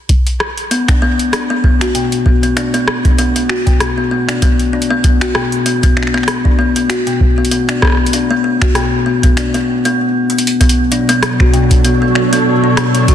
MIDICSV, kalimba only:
0, 0, Header, 1, 2, 480
1, 0, Start_track
1, 0, Key_signature, 2, "minor"
1, 0, Tempo, 618557
1, 552, Time_signature, 4, 2, 24, 8
1, 10203, End_track
2, 0, Start_track
2, 0, Title_t, "Kalimba"
2, 0, Program_c, 0, 108
2, 552, Note_on_c, 0, 59, 82
2, 625, Note_off_c, 0, 59, 0
2, 686, Note_on_c, 0, 62, 76
2, 744, Note_off_c, 0, 62, 0
2, 792, Note_on_c, 0, 59, 101
2, 836, Note_off_c, 0, 59, 0
2, 1032, Note_on_c, 0, 62, 80
2, 1076, Note_off_c, 0, 62, 0
2, 1166, Note_on_c, 0, 59, 97
2, 1201, Note_off_c, 0, 59, 0
2, 1272, Note_on_c, 0, 59, 78
2, 1316, Note_off_c, 0, 59, 0
2, 1406, Note_on_c, 0, 66, 74
2, 1464, Note_off_c, 0, 66, 0
2, 1512, Note_on_c, 0, 47, 74
2, 1585, Note_off_c, 0, 47, 0
2, 1752, Note_on_c, 0, 59, 78
2, 1825, Note_off_c, 0, 59, 0
2, 1886, Note_on_c, 0, 59, 78
2, 1944, Note_off_c, 0, 59, 0
2, 1991, Note_on_c, 0, 62, 83
2, 2065, Note_off_c, 0, 62, 0
2, 2126, Note_on_c, 0, 59, 103
2, 2160, Note_off_c, 0, 59, 0
2, 2366, Note_on_c, 0, 62, 76
2, 2401, Note_off_c, 0, 62, 0
2, 2472, Note_on_c, 0, 59, 102
2, 2516, Note_off_c, 0, 59, 0
2, 2606, Note_on_c, 0, 59, 74
2, 2641, Note_off_c, 0, 59, 0
2, 2712, Note_on_c, 0, 66, 77
2, 2785, Note_off_c, 0, 66, 0
2, 2845, Note_on_c, 0, 47, 74
2, 2904, Note_off_c, 0, 47, 0
2, 3086, Note_on_c, 0, 59, 75
2, 3144, Note_off_c, 0, 59, 0
2, 3191, Note_on_c, 0, 59, 77
2, 3265, Note_off_c, 0, 59, 0
2, 3326, Note_on_c, 0, 62, 73
2, 3384, Note_off_c, 0, 62, 0
2, 3432, Note_on_c, 0, 59, 98
2, 3476, Note_off_c, 0, 59, 0
2, 3671, Note_on_c, 0, 62, 83
2, 3716, Note_off_c, 0, 62, 0
2, 3806, Note_on_c, 0, 59, 109
2, 3841, Note_off_c, 0, 59, 0
2, 3912, Note_on_c, 0, 59, 82
2, 3956, Note_off_c, 0, 59, 0
2, 4046, Note_on_c, 0, 66, 76
2, 4104, Note_off_c, 0, 66, 0
2, 4152, Note_on_c, 0, 47, 76
2, 4225, Note_off_c, 0, 47, 0
2, 4392, Note_on_c, 0, 59, 84
2, 4465, Note_off_c, 0, 59, 0
2, 4526, Note_on_c, 0, 59, 77
2, 4584, Note_off_c, 0, 59, 0
2, 4632, Note_on_c, 0, 62, 76
2, 4705, Note_off_c, 0, 62, 0
2, 4766, Note_on_c, 0, 59, 103
2, 4801, Note_off_c, 0, 59, 0
2, 5006, Note_on_c, 0, 62, 77
2, 5041, Note_off_c, 0, 62, 0
2, 5111, Note_on_c, 0, 59, 101
2, 5156, Note_off_c, 0, 59, 0
2, 5246, Note_on_c, 0, 59, 72
2, 5280, Note_off_c, 0, 59, 0
2, 5351, Note_on_c, 0, 66, 79
2, 5425, Note_off_c, 0, 66, 0
2, 5486, Note_on_c, 0, 47, 74
2, 5544, Note_off_c, 0, 47, 0
2, 5725, Note_on_c, 0, 59, 78
2, 5783, Note_off_c, 0, 59, 0
2, 5831, Note_on_c, 0, 59, 82
2, 5905, Note_off_c, 0, 59, 0
2, 5965, Note_on_c, 0, 62, 75
2, 6024, Note_off_c, 0, 62, 0
2, 6071, Note_on_c, 0, 59, 100
2, 6115, Note_off_c, 0, 59, 0
2, 6311, Note_on_c, 0, 62, 81
2, 6356, Note_off_c, 0, 62, 0
2, 6445, Note_on_c, 0, 59, 98
2, 6480, Note_off_c, 0, 59, 0
2, 6551, Note_on_c, 0, 59, 77
2, 6595, Note_off_c, 0, 59, 0
2, 6685, Note_on_c, 0, 66, 75
2, 6743, Note_off_c, 0, 66, 0
2, 6791, Note_on_c, 0, 47, 87
2, 6865, Note_off_c, 0, 47, 0
2, 7031, Note_on_c, 0, 59, 78
2, 7105, Note_off_c, 0, 59, 0
2, 7165, Note_on_c, 0, 59, 75
2, 7223, Note_off_c, 0, 59, 0
2, 7271, Note_on_c, 0, 62, 82
2, 7345, Note_off_c, 0, 62, 0
2, 7406, Note_on_c, 0, 59, 102
2, 7441, Note_off_c, 0, 59, 0
2, 7645, Note_on_c, 0, 59, 109
2, 7733, Note_off_c, 0, 59, 0
2, 8231, Note_on_c, 0, 59, 96
2, 8275, Note_off_c, 0, 59, 0
2, 8471, Note_on_c, 0, 62, 78
2, 8516, Note_off_c, 0, 62, 0
2, 8606, Note_on_c, 0, 59, 105
2, 8641, Note_off_c, 0, 59, 0
2, 8712, Note_on_c, 0, 59, 85
2, 8756, Note_off_c, 0, 59, 0
2, 8846, Note_on_c, 0, 66, 72
2, 8904, Note_off_c, 0, 66, 0
2, 8952, Note_on_c, 0, 47, 79
2, 9025, Note_off_c, 0, 47, 0
2, 9192, Note_on_c, 0, 59, 82
2, 9265, Note_off_c, 0, 59, 0
2, 9326, Note_on_c, 0, 59, 74
2, 9384, Note_off_c, 0, 59, 0
2, 9431, Note_on_c, 0, 62, 78
2, 9505, Note_off_c, 0, 62, 0
2, 9566, Note_on_c, 0, 59, 102
2, 9601, Note_off_c, 0, 59, 0
2, 9806, Note_on_c, 0, 62, 77
2, 9841, Note_off_c, 0, 62, 0
2, 9912, Note_on_c, 0, 59, 104
2, 9956, Note_off_c, 0, 59, 0
2, 10046, Note_on_c, 0, 59, 79
2, 10081, Note_off_c, 0, 59, 0
2, 10152, Note_on_c, 0, 66, 82
2, 10203, Note_off_c, 0, 66, 0
2, 10203, End_track
0, 0, End_of_file